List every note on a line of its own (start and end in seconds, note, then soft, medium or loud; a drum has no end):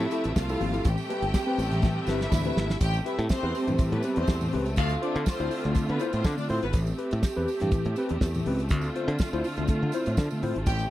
0.00 0.83 C3 medium
0.00 0.84 F3 medium
0.00 0.83 A3 medium
0.00 0.33 E4 medium
0.00 0.33 E5 loud
0.00 closed hi-hat soft
0.11 0.25 E4 medium
0.11 0.23 G4 medium
0.11 0.23 A4 medium
0.11 closed hi-hat medium
0.11 tambourine medium
0.24 0.33 A1 medium
0.24 0.29 G4 soft
0.24 0.29 A4 soft
0.24 closed hi-hat medium
0.36 0.54 C2 medium
0.36 0.84 F4 medium
0.36 0.85 F5 medium
0.36 kick loud
0.36 snare loud
0.36 tambourine medium
0.36 high conga medium
0.49 0.62 E4 medium
0.49 0.62 G4 medium
0.49 0.62 A4 medium
0.49 closed hi-hat soft
0.49 tambourine medium
0.60 0.79 G#1 medium
0.60 0.74 F3 medium
0.60 0.74 C4 medium
0.60 open hi-hat medium
0.60 high conga medium
0.73 0.86 E4 medium
0.73 0.86 G4 medium
0.73 0.86 A4 medium
0.73 closed hi-hat medium
0.73 tambourine soft
0.85 0.95 A1 loud
0.85 0.99 A2 medium
0.85 2.80 C3 medium
0.85 0.99 E3 medium
0.85 2.80 G3 medium
0.85 2.80 A3 medium
0.85 2.06 G4 medium
0.85 2.06 G5 medium
0.85 kick loud
0.85 closed hi-hat medium
0.85 tambourine medium
0.85 muted conga medium
0.98 tambourine medium
1.09 1.23 G4 medium
1.09 1.23 B4 medium
1.09 closed hi-hat medium
1.09 muted conga medium
1.22 1.31 G1 medium
1.22 closed hi-hat soft
1.34 kick loud
1.34 snare loud
1.34 tambourine medium
1.34 high conga medium
1.47 1.59 C4 medium
1.47 1.59 G4 medium
1.47 1.60 B4 medium
1.58 1.86 A1 medium
1.58 closed hi-hat medium
1.58 tambourine medium
1.58 muted conga soft
1.71 1.82 A2 medium
1.71 1.82 E3 medium
1.71 snare soft
1.71 closed hi-hat soft
1.82 1.97 A2 medium
1.82 1.97 E3 medium
1.82 kick loud
1.82 snare medium
1.82 tambourine medium
1.82 muted conga medium
2.06 2.26 G1 medium
2.06 2.21 C4 medium
2.06 2.80 E4 medium
2.06 2.20 G4 medium
2.06 2.20 B4 medium
2.06 2.80 E5 medium
2.06 snare medium
2.06 tambourine soft
2.21 2.25 G4 soft
2.21 2.26 B4 soft
2.21 snare medium
2.21 tambourine soft
2.32 2.50 D2 medium
2.32 2.46 A2 medium
2.32 2.46 E3 medium
2.32 kick loud
2.32 snare medium
2.32 tambourine medium
2.32 high conga medium
2.45 2.57 C4 medium
2.45 2.57 G4 medium
2.45 2.56 B4 medium
2.45 tambourine medium
2.56 2.75 G#1 medium
2.56 2.62 G4 soft
2.56 2.62 B4 soft
2.56 snare loud
2.56 high conga medium
2.70 snare loud
2.70 tambourine soft
2.81 2.99 A1 loud
2.81 2.95 A2 soft
2.81 4.76 C3 medium
2.81 2.95 E3 medium
2.81 4.76 G3 medium
2.81 6.71 A3 medium
2.81 2.92 G4 loud
2.81 2.92 G5 loud
2.81 kick loud
2.81 closed hi-hat medium
2.81 tambourine medium
2.94 tambourine medium
3.06 3.16 E4 medium
3.06 3.19 G4 medium
3.06 3.20 B4 medium
3.06 3.16 E5 medium
3.06 closed hi-hat medium
3.19 3.27 A2 loud
3.19 closed hi-hat soft
3.19 tambourine soft
3.29 3.77 C4 loud
3.29 3.77 C5 loud
3.29 kick medium
3.29 snare loud
3.29 tambourine medium
3.43 3.52 E2 medium
3.43 3.56 C4 medium
3.43 3.56 G4 medium
3.43 3.56 B4 medium
3.55 open hi-hat medium
3.55 tambourine medium
3.67 3.76 G2 medium
3.67 3.79 A2 medium
3.67 3.79 E3 medium
3.67 closed hi-hat soft
3.67 tambourine soft
3.78 3.93 A2 medium
3.78 3.93 E3 medium
3.78 kick loud
3.78 closed hi-hat medium
3.78 tambourine medium
3.92 4.01 A2 loud
3.92 4.02 B3 medium
3.92 4.02 B4 medium
3.92 closed hi-hat soft
4.03 4.18 C4 medium
4.03 4.16 G4 medium
4.03 4.17 B4 medium
4.03 closed hi-hat medium
4.03 tambourine medium
4.16 4.26 E2 medium
4.16 4.51 C4 medium
4.16 4.22 G4 soft
4.16 4.22 B4 soft
4.16 4.51 C5 loud
4.16 closed hi-hat medium
4.27 4.46 E2 medium
4.27 4.34 G4 soft
4.27 4.34 B4 soft
4.27 kick loud
4.27 snare loud
4.27 tambourine medium
4.41 4.54 A2 medium
4.41 4.54 E3 medium
4.41 tambourine medium
4.53 4.78 C#2 medium
4.53 4.67 C4 medium
4.53 4.67 G4 medium
4.53 4.67 B4 medium
4.53 open hi-hat medium
4.66 closed hi-hat soft
4.66 tambourine soft
4.76 4.96 D2 loud
4.76 6.72 D3 medium
4.76 4.91 D3 medium
4.76 4.92 A3 medium
4.76 10.90 C4 medium
4.76 6.72 F4 medium
4.76 4.88 F4 loud
4.76 4.88 F5 loud
4.76 kick loud
4.76 closed hi-hat medium
4.76 tambourine medium
4.89 closed hi-hat soft
4.89 tambourine soft
5.02 5.12 D4 medium
5.02 5.16 F4 medium
5.02 5.16 C5 medium
5.02 5.12 D5 medium
5.02 closed hi-hat medium
5.16 5.24 D3 loud
5.16 closed hi-hat soft
5.26 5.73 C4 medium
5.26 5.73 C5 loud
5.26 kick loud
5.26 snare medium
5.26 tambourine medium
5.39 5.48 D2 medium
5.39 5.52 E4 medium
5.39 5.52 F4 medium
5.39 5.52 C5 medium
5.39 closed hi-hat soft
5.51 open hi-hat medium
5.51 tambourine medium
5.64 5.73 D2 medium
5.64 5.75 D3 medium
5.64 5.75 A3 medium
5.64 snare soft
5.64 closed hi-hat soft
5.75 5.90 D3 medium
5.75 5.90 A3 medium
5.75 kick loud
5.75 closed hi-hat medium
5.75 tambourine medium
5.89 5.98 D3 medium
5.89 5.98 B3 medium
5.89 5.99 B4 medium
5.89 closed hi-hat soft
5.99 6.14 E4 medium
5.99 6.11 F4 medium
5.99 6.12 C5 medium
5.99 closed hi-hat medium
5.99 tambourine medium
6.13 6.22 A2 medium
6.13 6.23 C4 medium
6.13 6.18 F4 soft
6.13 6.18 C5 soft
6.13 6.23 C5 medium
6.13 closed hi-hat medium
6.13 tambourine soft
6.24 6.35 D3 loud
6.24 6.36 D4 medium
6.24 6.30 F4 soft
6.24 6.30 C5 medium
6.24 6.36 D5 medium
6.24 kick loud
6.24 snare loud
6.24 tambourine medium
6.37 6.50 D3 medium
6.37 6.50 A3 medium
6.37 6.48 D4 medium
6.37 6.47 D5 medium
6.37 tambourine medium
6.49 6.59 A2 medium
6.49 6.60 C4 medium
6.49 6.63 E4 medium
6.49 6.63 F4 medium
6.49 6.63 C5 medium
6.49 6.61 C5 medium
6.49 open hi-hat medium
6.62 6.71 G#1 medium
6.62 6.72 B3 medium
6.62 6.72 B4 medium
6.62 closed hi-hat soft
6.62 tambourine soft
6.73 6.92 A1 loud
6.73 6.88 A2 medium
6.73 6.88 E3 medium
6.73 10.90 A3 medium
6.73 8.68 G4 medium
6.73 kick loud
6.73 closed hi-hat medium
6.73 tambourine medium
6.87 closed hi-hat soft
6.87 tambourine medium
6.98 7.12 G4 medium
6.98 7.12 B4 medium
6.98 closed hi-hat medium
7.11 7.21 A2 loud
7.11 closed hi-hat soft
7.11 tambourine soft
7.23 kick loud
7.23 snare loud
7.23 tambourine medium
7.36 7.45 E2 medium
7.36 7.48 C4 medium
7.36 7.48 G4 medium
7.36 7.49 B4 medium
7.48 open hi-hat medium
7.48 tambourine medium
7.60 7.70 G2 medium
7.60 7.72 A2 medium
7.60 7.72 E3 medium
7.60 snare soft
7.60 closed hi-hat medium
7.60 tambourine soft
7.71 7.86 A2 medium
7.71 7.86 E3 medium
7.71 muted fingered electric bass stroke soft
7.71 kick loud
7.71 closed hi-hat medium
7.71 tambourine medium
7.85 7.94 A2 medium
7.85 closed hi-hat soft
7.96 8.11 C4 medium
7.96 8.10 G4 medium
7.96 8.11 B4 medium
7.96 closed hi-hat medium
7.96 tambourine medium
8.09 8.19 E2 medium
8.09 8.15 G4 soft
8.09 8.15 B4 soft
8.09 closed hi-hat medium
8.21 8.39 E2 medium
8.21 8.27 G4 soft
8.21 8.27 B4 soft
8.21 kick loud
8.21 snare loud
8.21 tambourine medium
8.34 8.47 A2 medium
8.34 8.47 E3 medium
8.34 closed hi-hat soft
8.34 tambourine medium
8.46 8.71 C#2 medium
8.46 8.60 C4 medium
8.46 8.60 G4 medium
8.46 8.60 B4 medium
8.46 open hi-hat medium
8.59 closed hi-hat soft
8.59 tambourine soft
8.69 8.89 D2 medium
8.69 10.65 D3 medium
8.69 8.85 D3 medium
8.69 8.85 A3 medium
8.69 10.65 F4 medium
8.69 kick loud
8.69 closed hi-hat loud
8.69 tambourine medium
8.81 closed hi-hat soft
8.81 tambourine soft
8.96 9.09 F4 medium
8.96 9.09 C5 medium
8.96 closed hi-hat medium
9.08 9.16 D3 loud
9.08 closed hi-hat medium
9.19 kick loud
9.19 snare loud
9.19 tambourine medium
9.33 9.41 D2 loud
9.33 9.45 E4 medium
9.33 9.45 F4 medium
9.33 9.45 C5 medium
9.44 open hi-hat medium
9.44 tambourine medium
9.56 9.66 D2 medium
9.56 9.69 D3 medium
9.56 9.69 A3 medium
9.56 closed hi-hat soft
9.56 tambourine soft
9.67 9.83 D3 medium
9.67 9.83 A3 medium
9.67 muted fingered electric bass stroke soft
9.67 kick loud
9.67 closed hi-hat medium
9.67 tambourine medium
9.83 9.91 D3 medium
9.92 10.07 E4 medium
9.92 10.07 F4 medium
9.92 10.07 C5 medium
9.92 closed hi-hat medium
9.92 tambourine medium
10.06 10.15 A2 medium
10.06 10.12 F4 soft
10.06 10.12 C5 soft
10.06 closed hi-hat medium
10.06 tambourine soft
10.17 10.27 D3 loud
10.17 10.24 F4 soft
10.17 10.23 C5 soft
10.17 kick loud
10.17 snare loud
10.17 tambourine medium
10.30 10.44 D3 medium
10.30 10.44 A3 medium
10.30 tambourine medium
10.43 10.52 A2 medium
10.43 10.56 E4 medium
10.43 10.56 F4 medium
10.43 10.57 C5 medium
10.43 open hi-hat medium
10.56 10.64 G#1 medium
10.56 closed hi-hat soft
10.66 10.85 A1 loud
10.66 10.81 A2 medium
10.66 10.81 E3 medium
10.66 10.77 G4 loud
10.66 10.90 G4 medium
10.66 10.77 G5 loud
10.66 kick loud
10.66 closed hi-hat medium
10.66 tambourine medium
10.66 muted conga medium
10.79 tambourine soft